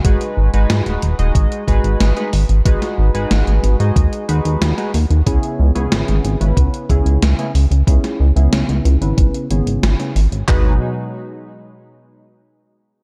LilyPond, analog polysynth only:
\new Staff \with { instrumentName = "Analog polysynth" } { \time 4/4 \key gis \minor \tempo 4 = 92 <gis dis' fis' gis' b'>8. <gis dis' fis' gis' b'>4 <gis dis' fis' gis' dis''>8. <gis dis' fis' gis' b'>8. <gis dis' fis' gis' b'>16 r8 | <gis dis' fis' gis' b'>8. <gis dis' fis' gis' b'>4 <gis dis' fis' gis' dis''>8. <gis dis' fis' gis' b'>8. <gis dis' fis' gis' b'>16 r8 | <cis b cis' e' gis'>8. <cis b cis' e' gis'>4 <cis b cis' e' b'>8. <cis b cis' e' gis'>8. <cis b cis' e' gis'>16 r8 | <cis b cis' e' gis'>8. <cis b cis' e' gis'>4 <cis b cis' e' b'>8. <cis b cis' e' gis'>8. <cis b cis' e' gis'>16 r8 |
<dis' fis' gis' b'>8 r2. r8 | }